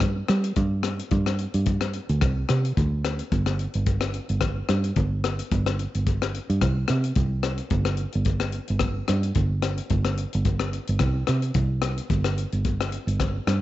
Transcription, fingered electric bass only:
Already playing: G2
0.29 G3
0.57 G2
1.12 G2
1.54 G2
2.09 D2
2.22 C2
2.50 C3
2.77 D2
3.32 G1
3.75 G1
4.30 G1
4.69 G2
4.97 G1
5.52 G1
5.95 G1
6.50 G2
6.62 C2
6.90 C3
7.16 C2
7.71 G1
8.15 G1
8.70 G1
9.09 G2
9.36 G1
9.91 G1
10.35 G1
10.89 G1
11.00 C2
11.28 C3
11.55 C2
12.10 G1
12.53 G1
13.07 G1
13.47 G2

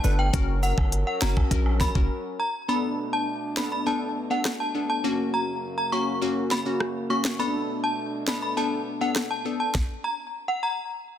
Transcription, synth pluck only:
0.04 D4 A4 B4
0.33 C#4 F#4 A#4
1.21 C#4 F#4 A#4
1.51 C#4 F#4 A#4
1.95 C#4 F#4 A#4
2.68 B3 D4 A4
3.57 B3 D4 A4
3.86 B3 D4 A4
4.30 B3 D4 A4
4.74 B3 D4 A4
5.04 A#3 C#4 F#4
5.92 A#3 C#4 F#4
6.21 A#3 C#4 F#4
6.66 A#3 C#4 F#4
7.10 A#3 C#4 F#4
7.39 B3 D4 A4
8.27 B3 D4 A4
8.57 B3 D4 A4
9.01 B3 D4 A4
9.45 B3 D4 A4

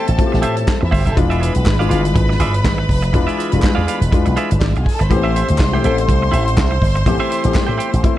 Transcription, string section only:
Already playing: A4 A5
0.85 E4 E5
0.92 F4 F5
1.01 G4 G5
1.09 A4 A5
1.15 B4 B5
4.60 D4 D5
4.67 E4 E5
4.76 F4 F5
4.84 G#4 G#5
4.92 A4 A5
5.01 B4 B5
5.09 C5 C6

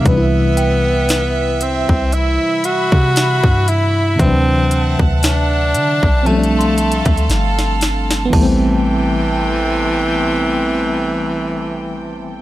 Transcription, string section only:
Already playing: E5
2.12 B5
4.19 F#5 A5
6.26 A4 F5
8.33 C3 A4 G5

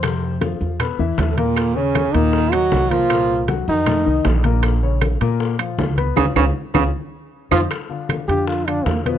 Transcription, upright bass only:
Already playing: F2
0.61 E2
0.99 E2
1.18 D#2
2.14 D#2
2.72 C2
3.68 F2
4.06 C2
4.25 A#1
5.21 A#2
5.78 C#2
6.17 C#2
6.36 C#2
6.75 C#2
7.52 F2
8.28 F2
8.86 E2

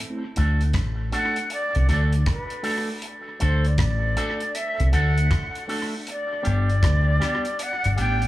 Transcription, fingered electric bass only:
0.38 D2
0.74 A1
1.76 C2
1.89 D2
3.42 D2
3.79 A1
4.80 C2
4.94 D2
6.47 G1
6.83 D2
7.85 G1
7.98 A1

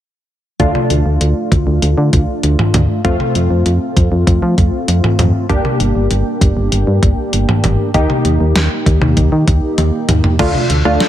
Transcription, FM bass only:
0.60 D2
0.90 D2
1.06 D2
1.21 D2
1.52 D2
1.67 D2
1.82 D2
1.98 D3
2.13 D2
2.43 D2
2.74 D2
3.05 F2
3.35 F2
3.50 F2
3.66 F2
3.97 F2
4.12 F2
4.27 F2
4.42 F3
4.58 F2
4.88 F2
5.19 F2
5.50 G1
5.80 G1
5.95 G1
6.11 G1
6.41 G1
6.57 G1
6.72 G1
6.87 G2
7.03 G1
7.33 G1
7.64 G1
7.94 D#2
8.25 D#2
8.40 D#2
8.56 D#2
8.86 D#2
9.02 D#2
9.17 D#2
9.32 D#3
9.48 D#2
9.78 D#2
10.09 D#2
10.39 D2
10.70 D2
10.85 D2

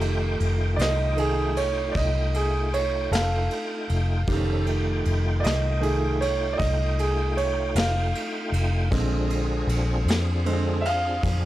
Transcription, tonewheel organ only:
Already playing: A3 D#4 F4 G5
4.27 C#4 D#4 A4 C5
4.67 A3 D#4 F4 G5
8.90 C4 D4 F4 G#4

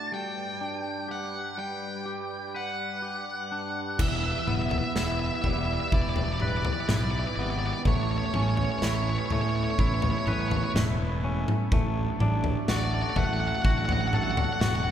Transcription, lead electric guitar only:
Already playing: A5
0.14 G5
1.11 F#5
1.59 G5
2.56 F#5
4.01 E5
4.08 E5
4.16 E5
4.24 E5
4.32 E5
4.39 E5
4.47 E5
4.55 E5
4.62 E5
4.71 E5
4.78 E5
4.84 E5
4.97 E5
5.04 E5
5.12 E5
5.19 E5
5.26 E5
5.35 E5
5.42 E5
5.50 E5
5.57 E5
5.65 E5
5.74 E5
5.80 E5
5.88 E5
5.94 D5
6.02 D5
6.09 D5
6.17 D5
6.25 D5
6.33 D5
6.41 D5
6.48 D5
6.57 D5
6.65 D5
6.73 D5
6.81 D5
6.88 D5
6.96 D5
7.04 D5
7.11 D5
7.19 D5
7.27 D5
7.36 D5
7.43 D5
7.50 D5
7.59 D5
7.66 D5
7.73 D5
7.87 C#5
7.95 C#5
8.03 C#5
8.11 C#5
8.18 C#5
8.26 C#5
8.34 C#5
8.42 C#5
8.49 C#5
8.56 C#5
8.64 C#5
8.72 C#5
8.79 C#5
8.86 C#5
8.94 C#5
9.03 C#5
9.10 C#5
9.19 C#5
9.26 C#5
9.32 C#5
9.41 C#5
9.49 C#5
9.56 C#5
9.64 C#5
9.71 C#5
9.80 C#5
9.87 C#5
9.94 C#5
10.02 C#5
10.10 C#5
10.18 C#5
10.26 C#5
10.33 C#5
10.41 C#5
10.48 C#5
10.57 C#5
10.64 C#5
12.69 D5
12.77 D5
12.84 D5
12.94 D5
13.02 D5
13.10 D5
13.17 F#5
13.25 F#5
13.34 F#5
13.40 F#5
13.48 F#5
13.55 F#5
13.62 F#5
13.71 F#5
13.78 F#5
13.85 F#5
13.92 F#5
14.01 F#5
14.08 F#5
14.16 F#5
14.24 F#5
14.31 F#5
14.39 F#5
14.45 F#5
14.53 F#5
14.61 F#5
14.68 F#5
14.76 F#5
14.84 F#5

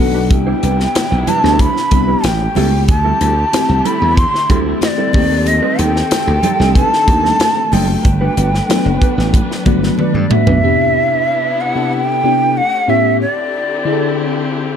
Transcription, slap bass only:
0.00 B1
0.31 C2
0.63 C2
1.12 B1
1.44 D2
1.92 C2
2.24 A1
2.56 C#2
2.89 D2
3.21 D2
3.69 C2
4.02 E2
4.50 D2
5.14 D#2
5.79 D#2
6.27 D2
6.60 C2
7.08 D#2
7.72 F#1
8.05 G1
8.37 G1
8.85 F#1
9.18 A1
9.66 G1
10.14 G2
10.46 B1

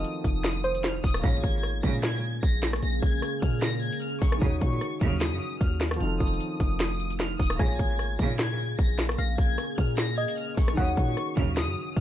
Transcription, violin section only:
Already playing: D#6
0.25 D#6
0.84 F6
1.04 D#6
1.23 A#6
1.44 G#6
1.83 A#6
2.03 G#6
2.43 A#6
2.83 A#6
3.03 G#6
3.42 F6
3.62 A#6
3.82 G#6
4.02 F6
4.21 C#6
4.41 D#6
4.62 C#6
5.02 F6
5.21 D#6
5.60 F6
6.00 F6
6.20 D#6
6.61 D#6
7.20 F6
7.40 D#6
7.59 A#6
7.79 G#6
8.19 A#6
8.39 G#6
8.79 A#6
9.19 A#6
9.39 G#6
9.78 F6
9.98 A#6
10.18 G#6
10.38 F6
10.57 C#6
10.77 D#6
10.98 C#6
11.37 F6
11.57 D#6
11.96 F6

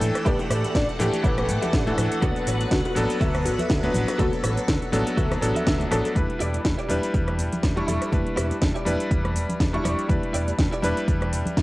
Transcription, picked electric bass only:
0.01 A2
0.26 A1
0.50 A2
0.64 muted picked electric bass stroke
0.75 A1
1.00 A2
1.24 A1
1.49 A2
1.73 A1
1.98 A2
2.22 D2
2.47 A1
2.72 D2
2.96 A1
3.21 D2
3.45 A1
3.59 muted picked electric bass stroke
3.70 D2
3.94 A1
4.19 D2
4.43 A1
4.57 muted picked electric bass stroke
4.68 D2
4.93 A1
5.17 D2
5.42 A1
5.67 D2
5.91 A1
6.16 E2
6.40 E1
6.65 E2
6.90 E1
7.14 E2
7.39 E1
7.63 E2
7.88 E1
8.13 E2
8.37 E1
8.51 muted picked electric bass stroke
8.62 E2
8.86 E1
9.11 E2
9.35 E1
9.49 muted picked electric bass stroke
9.60 E2
9.85 E1
10.09 E2
10.34 E1
10.59 E2
10.83 E1
11.08 E2
11.32 E1
11.46 muted picked electric bass stroke
11.57 E2

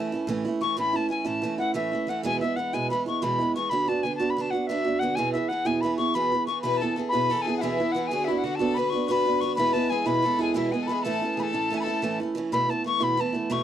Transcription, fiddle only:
6.65 B4
6.82 A4
7.13 B4
7.31 A4
7.45 G#4
7.61 E4
8.09 G#4
8.27 E4
8.44 F#4
8.59 A4
8.77 B4
9.09 B4
9.58 B4
9.92 G#4
10.07 B4
10.25 A4
10.41 G#4
10.56 E4
10.73 G#4
10.83 A4
10.93 G#4
11.03 A4
11.36 G#4
11.43 A4
11.81 A4

